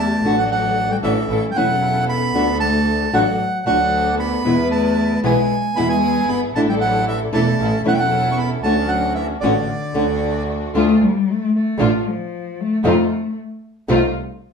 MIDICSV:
0, 0, Header, 1, 6, 480
1, 0, Start_track
1, 0, Key_signature, 2, "major"
1, 0, Tempo, 524934
1, 226, Time_signature, 4, 2, 24, 8
1, 9825, Key_signature, -1, "minor"
1, 13287, End_track
2, 0, Start_track
2, 0, Title_t, "Bandoneon"
2, 0, Program_c, 0, 23
2, 0, Note_on_c, 0, 81, 82
2, 351, Note_on_c, 0, 78, 69
2, 357, Note_off_c, 0, 81, 0
2, 458, Note_off_c, 0, 78, 0
2, 472, Note_on_c, 0, 78, 85
2, 836, Note_on_c, 0, 79, 70
2, 837, Note_off_c, 0, 78, 0
2, 887, Note_off_c, 0, 79, 0
2, 945, Note_on_c, 0, 76, 65
2, 1332, Note_off_c, 0, 76, 0
2, 1383, Note_on_c, 0, 79, 53
2, 1425, Note_on_c, 0, 78, 87
2, 1436, Note_off_c, 0, 79, 0
2, 1872, Note_off_c, 0, 78, 0
2, 1913, Note_on_c, 0, 83, 83
2, 2357, Note_off_c, 0, 83, 0
2, 2378, Note_on_c, 0, 81, 77
2, 2872, Note_on_c, 0, 78, 69
2, 2879, Note_off_c, 0, 81, 0
2, 3335, Note_off_c, 0, 78, 0
2, 3349, Note_on_c, 0, 78, 82
2, 3796, Note_off_c, 0, 78, 0
2, 3836, Note_on_c, 0, 83, 84
2, 4280, Note_off_c, 0, 83, 0
2, 4312, Note_on_c, 0, 81, 74
2, 4758, Note_off_c, 0, 81, 0
2, 4801, Note_on_c, 0, 80, 76
2, 5268, Note_on_c, 0, 83, 88
2, 5289, Note_off_c, 0, 80, 0
2, 5380, Note_off_c, 0, 83, 0
2, 5384, Note_on_c, 0, 80, 87
2, 5751, Note_on_c, 0, 83, 82
2, 5757, Note_off_c, 0, 80, 0
2, 5859, Note_off_c, 0, 83, 0
2, 5993, Note_on_c, 0, 81, 87
2, 6046, Note_off_c, 0, 81, 0
2, 6121, Note_on_c, 0, 79, 64
2, 6172, Note_off_c, 0, 79, 0
2, 6224, Note_on_c, 0, 78, 79
2, 6448, Note_off_c, 0, 78, 0
2, 6476, Note_on_c, 0, 76, 76
2, 6581, Note_off_c, 0, 76, 0
2, 6709, Note_on_c, 0, 81, 66
2, 7150, Note_off_c, 0, 81, 0
2, 7203, Note_on_c, 0, 78, 82
2, 7257, Note_off_c, 0, 78, 0
2, 7258, Note_on_c, 0, 79, 68
2, 7311, Note_on_c, 0, 78, 77
2, 7314, Note_off_c, 0, 79, 0
2, 7604, Note_on_c, 0, 85, 52
2, 7661, Note_off_c, 0, 85, 0
2, 7670, Note_off_c, 0, 78, 0
2, 7670, Note_on_c, 0, 83, 69
2, 7775, Note_off_c, 0, 83, 0
2, 7894, Note_on_c, 0, 81, 76
2, 8122, Note_on_c, 0, 78, 70
2, 8142, Note_off_c, 0, 81, 0
2, 8351, Note_off_c, 0, 78, 0
2, 8367, Note_on_c, 0, 76, 67
2, 8477, Note_off_c, 0, 76, 0
2, 8601, Note_on_c, 0, 74, 60
2, 9539, Note_off_c, 0, 74, 0
2, 13287, End_track
3, 0, Start_track
3, 0, Title_t, "String section"
3, 0, Program_c, 1, 48
3, 0, Note_on_c, 1, 62, 73
3, 0, Note_on_c, 1, 64, 72
3, 0, Note_on_c, 1, 67, 82
3, 185, Note_off_c, 1, 62, 0
3, 186, Note_off_c, 1, 64, 0
3, 188, Note_off_c, 1, 67, 0
3, 225, Note_on_c, 1, 62, 76
3, 227, Note_on_c, 1, 66, 60
3, 231, Note_on_c, 1, 69, 71
3, 907, Note_off_c, 1, 62, 0
3, 908, Note_off_c, 1, 66, 0
3, 910, Note_off_c, 1, 69, 0
3, 939, Note_on_c, 1, 62, 65
3, 940, Note_on_c, 1, 66, 56
3, 941, Note_on_c, 1, 69, 74
3, 1143, Note_off_c, 1, 62, 0
3, 1143, Note_off_c, 1, 66, 0
3, 1144, Note_off_c, 1, 69, 0
3, 1179, Note_on_c, 1, 61, 67
3, 1182, Note_on_c, 1, 64, 57
3, 1183, Note_on_c, 1, 69, 65
3, 1384, Note_off_c, 1, 61, 0
3, 1385, Note_off_c, 1, 64, 0
3, 1386, Note_off_c, 1, 69, 0
3, 1425, Note_on_c, 1, 61, 69
3, 1426, Note_on_c, 1, 64, 68
3, 1431, Note_on_c, 1, 69, 73
3, 2111, Note_off_c, 1, 61, 0
3, 2111, Note_off_c, 1, 64, 0
3, 2114, Note_off_c, 1, 69, 0
3, 2145, Note_on_c, 1, 62, 64
3, 2147, Note_on_c, 1, 69, 78
3, 2148, Note_on_c, 1, 66, 58
3, 2832, Note_off_c, 1, 62, 0
3, 2834, Note_off_c, 1, 66, 0
3, 2834, Note_off_c, 1, 69, 0
3, 2873, Note_on_c, 1, 62, 65
3, 2874, Note_on_c, 1, 66, 59
3, 2876, Note_on_c, 1, 69, 69
3, 3073, Note_off_c, 1, 62, 0
3, 3074, Note_off_c, 1, 66, 0
3, 3075, Note_off_c, 1, 69, 0
3, 3339, Note_on_c, 1, 62, 80
3, 3341, Note_on_c, 1, 66, 60
3, 3346, Note_on_c, 1, 69, 78
3, 4029, Note_off_c, 1, 62, 0
3, 4030, Note_off_c, 1, 66, 0
3, 4032, Note_off_c, 1, 69, 0
3, 4063, Note_on_c, 1, 59, 74
3, 4065, Note_on_c, 1, 64, 70
3, 4066, Note_on_c, 1, 71, 77
3, 4751, Note_off_c, 1, 59, 0
3, 4752, Note_off_c, 1, 64, 0
3, 4753, Note_off_c, 1, 71, 0
3, 4786, Note_on_c, 1, 59, 70
3, 4789, Note_on_c, 1, 64, 57
3, 4791, Note_on_c, 1, 68, 72
3, 4990, Note_off_c, 1, 59, 0
3, 4991, Note_off_c, 1, 64, 0
3, 4992, Note_off_c, 1, 68, 0
3, 5267, Note_on_c, 1, 59, 69
3, 5272, Note_on_c, 1, 64, 65
3, 5273, Note_on_c, 1, 68, 83
3, 5951, Note_off_c, 1, 59, 0
3, 5953, Note_off_c, 1, 64, 0
3, 5954, Note_off_c, 1, 68, 0
3, 5981, Note_on_c, 1, 62, 69
3, 5981, Note_on_c, 1, 69, 82
3, 5983, Note_on_c, 1, 64, 72
3, 6665, Note_off_c, 1, 62, 0
3, 6665, Note_off_c, 1, 69, 0
3, 6666, Note_off_c, 1, 64, 0
3, 6706, Note_on_c, 1, 62, 67
3, 6707, Note_on_c, 1, 64, 66
3, 6709, Note_on_c, 1, 69, 74
3, 6905, Note_off_c, 1, 62, 0
3, 6906, Note_off_c, 1, 64, 0
3, 6907, Note_off_c, 1, 69, 0
3, 6940, Note_on_c, 1, 61, 66
3, 6941, Note_on_c, 1, 64, 63
3, 6944, Note_on_c, 1, 69, 68
3, 7141, Note_off_c, 1, 61, 0
3, 7142, Note_off_c, 1, 64, 0
3, 7143, Note_off_c, 1, 69, 0
3, 7176, Note_on_c, 1, 61, 76
3, 7179, Note_on_c, 1, 64, 73
3, 7181, Note_on_c, 1, 69, 83
3, 7859, Note_off_c, 1, 61, 0
3, 7861, Note_off_c, 1, 64, 0
3, 7862, Note_off_c, 1, 69, 0
3, 7891, Note_on_c, 1, 61, 71
3, 7893, Note_on_c, 1, 62, 63
3, 7895, Note_on_c, 1, 66, 74
3, 8576, Note_off_c, 1, 61, 0
3, 8577, Note_off_c, 1, 62, 0
3, 8578, Note_off_c, 1, 66, 0
3, 8609, Note_on_c, 1, 61, 60
3, 8611, Note_on_c, 1, 62, 65
3, 8612, Note_on_c, 1, 66, 68
3, 8815, Note_off_c, 1, 61, 0
3, 8815, Note_off_c, 1, 62, 0
3, 8816, Note_off_c, 1, 66, 0
3, 9089, Note_on_c, 1, 66, 74
3, 9090, Note_on_c, 1, 57, 77
3, 9090, Note_on_c, 1, 62, 70
3, 9784, Note_off_c, 1, 66, 0
3, 9785, Note_off_c, 1, 57, 0
3, 9785, Note_off_c, 1, 62, 0
3, 9824, Note_on_c, 1, 62, 64
3, 9825, Note_on_c, 1, 57, 71
3, 9828, Note_on_c, 1, 65, 84
3, 10027, Note_off_c, 1, 62, 0
3, 10028, Note_off_c, 1, 57, 0
3, 10029, Note_off_c, 1, 65, 0
3, 10780, Note_on_c, 1, 57, 65
3, 10783, Note_on_c, 1, 62, 67
3, 10783, Note_on_c, 1, 65, 82
3, 10984, Note_off_c, 1, 57, 0
3, 10985, Note_off_c, 1, 62, 0
3, 10985, Note_off_c, 1, 65, 0
3, 11742, Note_on_c, 1, 57, 67
3, 11746, Note_on_c, 1, 63, 64
3, 11746, Note_on_c, 1, 65, 77
3, 11945, Note_off_c, 1, 57, 0
3, 11947, Note_off_c, 1, 63, 0
3, 11947, Note_off_c, 1, 65, 0
3, 12703, Note_on_c, 1, 63, 63
3, 12706, Note_on_c, 1, 57, 80
3, 12707, Note_on_c, 1, 65, 89
3, 12905, Note_off_c, 1, 63, 0
3, 12906, Note_off_c, 1, 57, 0
3, 12907, Note_off_c, 1, 65, 0
3, 13287, End_track
4, 0, Start_track
4, 0, Title_t, "Nylon-string guitar"
4, 0, Program_c, 2, 24
4, 223, Note_on_c, 2, 50, 65
4, 229, Note_on_c, 2, 57, 65
4, 232, Note_on_c, 2, 62, 66
4, 237, Note_on_c, 2, 66, 77
4, 306, Note_off_c, 2, 50, 0
4, 309, Note_off_c, 2, 57, 0
4, 311, Note_off_c, 2, 62, 0
4, 313, Note_off_c, 2, 66, 0
4, 940, Note_on_c, 2, 52, 68
4, 946, Note_on_c, 2, 57, 67
4, 950, Note_on_c, 2, 61, 77
4, 953, Note_on_c, 2, 64, 83
4, 1024, Note_off_c, 2, 52, 0
4, 1027, Note_off_c, 2, 57, 0
4, 1029, Note_off_c, 2, 61, 0
4, 1030, Note_off_c, 2, 64, 0
4, 1426, Note_on_c, 2, 57, 68
4, 1427, Note_on_c, 2, 52, 72
4, 1436, Note_on_c, 2, 61, 83
4, 1440, Note_on_c, 2, 64, 80
4, 1508, Note_off_c, 2, 52, 0
4, 1508, Note_off_c, 2, 57, 0
4, 1513, Note_off_c, 2, 61, 0
4, 1515, Note_off_c, 2, 64, 0
4, 2138, Note_on_c, 2, 50, 63
4, 2145, Note_on_c, 2, 57, 69
4, 2148, Note_on_c, 2, 62, 62
4, 2152, Note_on_c, 2, 66, 74
4, 2224, Note_off_c, 2, 50, 0
4, 2228, Note_off_c, 2, 57, 0
4, 2230, Note_off_c, 2, 62, 0
4, 2232, Note_off_c, 2, 66, 0
4, 2860, Note_on_c, 2, 50, 69
4, 2867, Note_on_c, 2, 57, 76
4, 2869, Note_on_c, 2, 66, 75
4, 2872, Note_on_c, 2, 62, 74
4, 2947, Note_off_c, 2, 50, 0
4, 2950, Note_off_c, 2, 57, 0
4, 2952, Note_off_c, 2, 66, 0
4, 2953, Note_off_c, 2, 62, 0
4, 3345, Note_on_c, 2, 50, 71
4, 3346, Note_on_c, 2, 57, 73
4, 3353, Note_on_c, 2, 62, 82
4, 3355, Note_on_c, 2, 66, 83
4, 3430, Note_off_c, 2, 50, 0
4, 3430, Note_off_c, 2, 57, 0
4, 3434, Note_off_c, 2, 62, 0
4, 3435, Note_off_c, 2, 66, 0
4, 4065, Note_on_c, 2, 47, 68
4, 4069, Note_on_c, 2, 52, 67
4, 4073, Note_on_c, 2, 56, 73
4, 4073, Note_on_c, 2, 59, 82
4, 4079, Note_on_c, 2, 64, 66
4, 4150, Note_off_c, 2, 47, 0
4, 4152, Note_off_c, 2, 52, 0
4, 4154, Note_off_c, 2, 56, 0
4, 4154, Note_off_c, 2, 59, 0
4, 4157, Note_off_c, 2, 64, 0
4, 4787, Note_on_c, 2, 47, 80
4, 4789, Note_on_c, 2, 52, 79
4, 4790, Note_on_c, 2, 56, 71
4, 4797, Note_on_c, 2, 59, 76
4, 4797, Note_on_c, 2, 64, 83
4, 4871, Note_off_c, 2, 47, 0
4, 4872, Note_off_c, 2, 52, 0
4, 4872, Note_off_c, 2, 56, 0
4, 4876, Note_off_c, 2, 59, 0
4, 4876, Note_off_c, 2, 64, 0
4, 5274, Note_on_c, 2, 47, 74
4, 5277, Note_on_c, 2, 52, 74
4, 5280, Note_on_c, 2, 59, 85
4, 5281, Note_on_c, 2, 56, 81
4, 5281, Note_on_c, 2, 64, 83
4, 5354, Note_off_c, 2, 47, 0
4, 5355, Note_off_c, 2, 52, 0
4, 5357, Note_off_c, 2, 56, 0
4, 5357, Note_off_c, 2, 59, 0
4, 5358, Note_off_c, 2, 64, 0
4, 5997, Note_on_c, 2, 57, 78
4, 5998, Note_on_c, 2, 50, 77
4, 6001, Note_on_c, 2, 62, 74
4, 6006, Note_on_c, 2, 64, 77
4, 6074, Note_off_c, 2, 57, 0
4, 6075, Note_off_c, 2, 50, 0
4, 6077, Note_off_c, 2, 62, 0
4, 6079, Note_off_c, 2, 64, 0
4, 6699, Note_on_c, 2, 57, 73
4, 6700, Note_on_c, 2, 52, 77
4, 6700, Note_on_c, 2, 61, 82
4, 6703, Note_on_c, 2, 64, 85
4, 6784, Note_off_c, 2, 52, 0
4, 6784, Note_off_c, 2, 57, 0
4, 6784, Note_off_c, 2, 61, 0
4, 6785, Note_off_c, 2, 64, 0
4, 7172, Note_on_c, 2, 52, 69
4, 7180, Note_on_c, 2, 61, 69
4, 7181, Note_on_c, 2, 57, 78
4, 7185, Note_on_c, 2, 64, 78
4, 7258, Note_off_c, 2, 52, 0
4, 7262, Note_off_c, 2, 61, 0
4, 7263, Note_off_c, 2, 57, 0
4, 7265, Note_off_c, 2, 64, 0
4, 7900, Note_on_c, 2, 50, 60
4, 7905, Note_on_c, 2, 57, 77
4, 7911, Note_on_c, 2, 61, 76
4, 7911, Note_on_c, 2, 66, 77
4, 7981, Note_off_c, 2, 50, 0
4, 7983, Note_off_c, 2, 57, 0
4, 7986, Note_off_c, 2, 61, 0
4, 7986, Note_off_c, 2, 66, 0
4, 8621, Note_on_c, 2, 50, 69
4, 8623, Note_on_c, 2, 57, 83
4, 8629, Note_on_c, 2, 61, 78
4, 8629, Note_on_c, 2, 66, 69
4, 8700, Note_off_c, 2, 50, 0
4, 8702, Note_off_c, 2, 57, 0
4, 8704, Note_off_c, 2, 61, 0
4, 8705, Note_off_c, 2, 66, 0
4, 9092, Note_on_c, 2, 50, 73
4, 9096, Note_on_c, 2, 57, 73
4, 9098, Note_on_c, 2, 61, 82
4, 9100, Note_on_c, 2, 66, 81
4, 9178, Note_off_c, 2, 50, 0
4, 9180, Note_off_c, 2, 57, 0
4, 9181, Note_off_c, 2, 61, 0
4, 9182, Note_off_c, 2, 66, 0
4, 9829, Note_on_c, 2, 50, 75
4, 9832, Note_on_c, 2, 62, 78
4, 9834, Note_on_c, 2, 57, 75
4, 9838, Note_on_c, 2, 65, 70
4, 9910, Note_off_c, 2, 50, 0
4, 9911, Note_off_c, 2, 62, 0
4, 9912, Note_off_c, 2, 57, 0
4, 9914, Note_off_c, 2, 65, 0
4, 10784, Note_on_c, 2, 50, 77
4, 10790, Note_on_c, 2, 65, 79
4, 10791, Note_on_c, 2, 57, 82
4, 10796, Note_on_c, 2, 62, 75
4, 10867, Note_off_c, 2, 50, 0
4, 10870, Note_off_c, 2, 57, 0
4, 10870, Note_off_c, 2, 65, 0
4, 10872, Note_off_c, 2, 62, 0
4, 11742, Note_on_c, 2, 48, 76
4, 11746, Note_on_c, 2, 51, 74
4, 11750, Note_on_c, 2, 57, 79
4, 11750, Note_on_c, 2, 65, 80
4, 11751, Note_on_c, 2, 60, 84
4, 11826, Note_off_c, 2, 48, 0
4, 11828, Note_off_c, 2, 51, 0
4, 11830, Note_off_c, 2, 57, 0
4, 11830, Note_off_c, 2, 60, 0
4, 11830, Note_off_c, 2, 65, 0
4, 12695, Note_on_c, 2, 48, 83
4, 12695, Note_on_c, 2, 51, 79
4, 12701, Note_on_c, 2, 57, 81
4, 12704, Note_on_c, 2, 60, 86
4, 12705, Note_on_c, 2, 65, 89
4, 12781, Note_off_c, 2, 48, 0
4, 12781, Note_off_c, 2, 51, 0
4, 12785, Note_off_c, 2, 57, 0
4, 12786, Note_off_c, 2, 60, 0
4, 12787, Note_off_c, 2, 65, 0
4, 13287, End_track
5, 0, Start_track
5, 0, Title_t, "Cello"
5, 0, Program_c, 3, 42
5, 0, Note_on_c, 3, 57, 72
5, 307, Note_off_c, 3, 57, 0
5, 335, Note_on_c, 3, 54, 58
5, 451, Note_off_c, 3, 54, 0
5, 460, Note_on_c, 3, 54, 70
5, 796, Note_off_c, 3, 54, 0
5, 819, Note_on_c, 3, 55, 61
5, 874, Note_off_c, 3, 55, 0
5, 941, Note_on_c, 3, 52, 63
5, 1330, Note_off_c, 3, 52, 0
5, 1358, Note_on_c, 3, 55, 42
5, 1418, Note_off_c, 3, 55, 0
5, 1422, Note_on_c, 3, 54, 62
5, 1871, Note_off_c, 3, 54, 0
5, 1902, Note_on_c, 3, 59, 62
5, 2351, Note_off_c, 3, 59, 0
5, 2379, Note_on_c, 3, 57, 67
5, 2831, Note_off_c, 3, 57, 0
5, 2858, Note_on_c, 3, 54, 58
5, 3311, Note_off_c, 3, 54, 0
5, 3333, Note_on_c, 3, 54, 59
5, 3788, Note_off_c, 3, 54, 0
5, 3804, Note_on_c, 3, 59, 69
5, 4263, Note_off_c, 3, 59, 0
5, 4299, Note_on_c, 3, 57, 66
5, 4751, Note_off_c, 3, 57, 0
5, 4794, Note_on_c, 3, 56, 68
5, 5238, Note_off_c, 3, 56, 0
5, 5265, Note_on_c, 3, 59, 68
5, 5379, Note_off_c, 3, 59, 0
5, 5388, Note_on_c, 3, 56, 67
5, 5723, Note_off_c, 3, 56, 0
5, 5751, Note_on_c, 3, 59, 64
5, 5858, Note_off_c, 3, 59, 0
5, 5991, Note_on_c, 3, 57, 67
5, 6045, Note_off_c, 3, 57, 0
5, 6103, Note_on_c, 3, 55, 57
5, 6158, Note_off_c, 3, 55, 0
5, 6223, Note_on_c, 3, 54, 62
5, 6447, Note_off_c, 3, 54, 0
5, 6469, Note_on_c, 3, 52, 61
5, 6576, Note_off_c, 3, 52, 0
5, 6708, Note_on_c, 3, 57, 73
5, 7149, Note_off_c, 3, 57, 0
5, 7176, Note_on_c, 3, 54, 58
5, 7233, Note_off_c, 3, 54, 0
5, 7238, Note_on_c, 3, 55, 52
5, 7296, Note_off_c, 3, 55, 0
5, 7301, Note_on_c, 3, 54, 74
5, 7585, Note_off_c, 3, 54, 0
5, 7590, Note_on_c, 3, 61, 42
5, 7647, Note_off_c, 3, 61, 0
5, 7652, Note_on_c, 3, 59, 62
5, 7761, Note_off_c, 3, 59, 0
5, 7882, Note_on_c, 3, 57, 64
5, 8112, Note_off_c, 3, 57, 0
5, 8121, Note_on_c, 3, 54, 64
5, 8351, Note_off_c, 3, 54, 0
5, 8367, Note_on_c, 3, 52, 58
5, 8477, Note_off_c, 3, 52, 0
5, 8607, Note_on_c, 3, 50, 54
5, 9542, Note_off_c, 3, 50, 0
5, 9834, Note_on_c, 3, 57, 98
5, 10079, Note_on_c, 3, 55, 83
5, 10093, Note_off_c, 3, 57, 0
5, 10339, Note_on_c, 3, 57, 86
5, 10353, Note_off_c, 3, 55, 0
5, 10563, Note_off_c, 3, 57, 0
5, 10567, Note_on_c, 3, 57, 84
5, 11057, Note_on_c, 3, 53, 76
5, 11070, Note_off_c, 3, 57, 0
5, 11528, Note_on_c, 3, 57, 82
5, 11542, Note_off_c, 3, 53, 0
5, 11748, Note_off_c, 3, 57, 0
5, 11754, Note_on_c, 3, 57, 80
5, 12196, Note_off_c, 3, 57, 0
5, 13287, End_track
6, 0, Start_track
6, 0, Title_t, "Double bass"
6, 0, Program_c, 4, 43
6, 0, Note_on_c, 4, 40, 89
6, 185, Note_off_c, 4, 40, 0
6, 225, Note_on_c, 4, 33, 86
6, 907, Note_off_c, 4, 33, 0
6, 941, Note_on_c, 4, 33, 84
6, 1144, Note_off_c, 4, 33, 0
6, 1176, Note_on_c, 4, 33, 77
6, 1382, Note_off_c, 4, 33, 0
6, 1425, Note_on_c, 4, 28, 80
6, 2111, Note_off_c, 4, 28, 0
6, 2142, Note_on_c, 4, 38, 86
6, 2831, Note_off_c, 4, 38, 0
6, 2869, Note_on_c, 4, 33, 81
6, 3072, Note_off_c, 4, 33, 0
6, 3351, Note_on_c, 4, 38, 83
6, 4035, Note_off_c, 4, 38, 0
6, 4069, Note_on_c, 4, 40, 88
6, 4754, Note_off_c, 4, 40, 0
6, 4786, Note_on_c, 4, 35, 77
6, 4990, Note_off_c, 4, 35, 0
6, 5265, Note_on_c, 4, 40, 82
6, 5749, Note_off_c, 4, 40, 0
6, 5755, Note_on_c, 4, 31, 56
6, 5984, Note_off_c, 4, 31, 0
6, 5989, Note_on_c, 4, 33, 91
6, 6670, Note_off_c, 4, 33, 0
6, 6707, Note_on_c, 4, 28, 93
6, 6906, Note_off_c, 4, 28, 0
6, 6948, Note_on_c, 4, 33, 91
6, 7145, Note_off_c, 4, 33, 0
6, 7184, Note_on_c, 4, 28, 82
6, 7863, Note_off_c, 4, 28, 0
6, 7896, Note_on_c, 4, 38, 78
6, 8579, Note_off_c, 4, 38, 0
6, 8609, Note_on_c, 4, 33, 86
6, 8814, Note_off_c, 4, 33, 0
6, 9095, Note_on_c, 4, 38, 81
6, 9787, Note_off_c, 4, 38, 0
6, 9819, Note_on_c, 4, 38, 87
6, 10025, Note_off_c, 4, 38, 0
6, 10776, Note_on_c, 4, 33, 93
6, 10982, Note_off_c, 4, 33, 0
6, 11741, Note_on_c, 4, 41, 91
6, 11945, Note_off_c, 4, 41, 0
6, 12701, Note_on_c, 4, 36, 96
6, 12904, Note_off_c, 4, 36, 0
6, 13287, End_track
0, 0, End_of_file